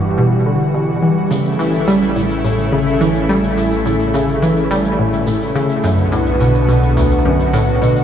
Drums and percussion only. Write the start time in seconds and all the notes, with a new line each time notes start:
1.31 high tom, shaker
1.45 shaker
1.59 shaker
1.74 high tom, shaker
1.88 shaker
2.02 shaker
2.16 high tom, shaker
2.30 shaker
2.45 shaker
2.59 high tom, shaker
2.87 shaker
3.01 high tom, shaker
3.15 shaker
3.29 shaker
3.43 high tom, shaker
3.58 shaker
3.72 shaker
3.86 high tom, shaker
4.00 shaker
4.14 shaker
4.28 high tom, shaker
4.42 shaker
4.57 shaker
4.71 high tom, shaker
4.85 shaker
5.13 high tom, shaker
5.27 shaker
5.41 shaker
5.55 high tom, shaker
5.70 shaker
5.84 shaker
5.98 high tom, shaker
6.12 shaker
6.26 shaker
6.41 high tom, shaker
6.55 shaker
6.69 shaker
6.83 high tom, shaker
6.97 shaker
7.11 shaker
7.26 high tom
7.40 shaker
7.54 shaker
7.68 high tom, shaker
7.82 shaker
7.96 shaker